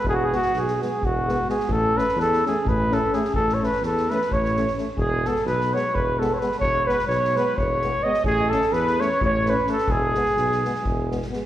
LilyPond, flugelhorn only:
\new Staff \with { instrumentName = "Flugelhorn" } { \time 7/8 \key e \major \tempo 4 = 128 gis'32 fis'32 gis'16 fis'8 gis'8 gis'8 fis'4 gis'8 | a'8 b'8 a'8 gis'8 b'8 a'8 gis'8 | a'16. cis''32 b'8 a'8 b'8 cis''8.~ cis''32 r8 r32 | gis'8 a'8 b'8 cis''8 b'8 a'16. cis''32 b'8 |
cis''8 b'8 cis''8 b'8 cis''4 dis''8 | gis'8 a'8 b'8 cis''8 cis''8 b'8 a'8 | gis'2~ gis'8 r4 | }